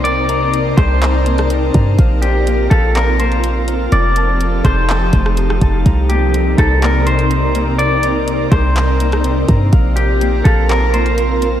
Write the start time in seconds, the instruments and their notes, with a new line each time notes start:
Already playing: 808-style bass C2, ambient pad C3 C4 D#4 A#4 D5, harp A#3 A#5, synth texture D#4 C5
0.04 harp C3, clean electric guitar D5, synth texture A5, closed hi-hat
0.29 harp A#5, closed hi-hat
0.54 closed hi-hat
0.77 808-style bass C2, harp C3, clean electric guitar C5, kick, cross-stick, closed hi-hat
1.02 harp A#5, clap, closed hi-hat
1.26 harp A#3, closed hi-hat
1.38 cross-stick, closed hi-hat
1.50 harp C3, closed hi-hat
1.74 808-style bass G2, harp A#5, kick, closed hi-hat
1.98 808-style bass A#1, synth texture C4 A#4 F5, ambient pad F4, harp F5, kick, closed hi-hat
2.22 harp C4, clean electric guitar G4, closed hi-hat
2.47 harp A#3, closed hi-hat
2.70 808-style bass A#1, clean electric guitar A4, harp F5, kick, cross-stick, closed hi-hat
2.95 harp C4, clean electric guitar A#4, clap, closed hi-hat
3.20 harp A#3, clean electric guitar C5, closed hi-hat
3.32 closed hi-hat
3.44 closed hi-hat
3.68 harp C4, closed hi-hat
3.92 808-style bass F1, ambient pad F3 C4 D#4 G4 A4, harp F3, synth texture D#4 A4, clean electric guitar D5, closed hi-hat
4.16 harp A5, closed hi-hat
4.41 closed hi-hat
4.64 808-style bass F1, harp F3, clean electric guitar C5, kick, cross-stick, closed hi-hat
4.89 harp A5, clap, closed hi-hat
5.13 808-style bass F1, harp A3, kick, closed hi-hat
5.26 cross-stick
5.37 harp F3, closed hi-hat
5.50 cross-stick
5.61 808-style bass F1, harp A5, kick, closed hi-hat
5.85 808-style bass C2, ambient pad C3 A#4 D5, synth texture C4 D#4 A#4, harp A#5, kick, closed hi-hat
6.09 harp A#3, clean electric guitar G4, closed hi-hat
6.34 harp C3, closed hi-hat
6.58 808-style bass C2, clean electric guitar A4, harp A#5, kick, cross-stick, closed hi-hat
6.82 harp A#3, clean electric guitar A#4, clap, closed hi-hat
7.07 harp C3, clean electric guitar C5, closed hi-hat
7.19 closed hi-hat
7.31 closed hi-hat
7.55 harp A#3, closed hi-hat
7.78 harp C3, clean electric guitar D5, closed hi-hat
8.03 harp A#5, closed hi-hat
8.28 closed hi-hat
8.51 808-style bass C2, harp C3, clean electric guitar C5, kick, cross-stick, closed hi-hat
8.76 harp A#5, clap, closed hi-hat
9.00 harp A#3, closed hi-hat
9.12 cross-stick, closed hi-hat
9.24 harp C3, closed hi-hat
9.48 808-style bass G2, harp A#5, kick, closed hi-hat
9.72 808-style bass A#1, ambient pad F4 A#4, harp F5, synth texture F5, kick, closed hi-hat
9.96 harp C4, clean electric guitar G4, closed hi-hat
10.21 harp A#3, closed hi-hat
10.44 808-style bass A#1, clean electric guitar A4, harp F5, kick, cross-stick, closed hi-hat
10.69 harp C4, clean electric guitar A#4, clap, closed hi-hat
10.94 harp A#3, clean electric guitar C5, closed hi-hat
11.06 closed hi-hat
11.18 closed hi-hat
11.42 harp C4, closed hi-hat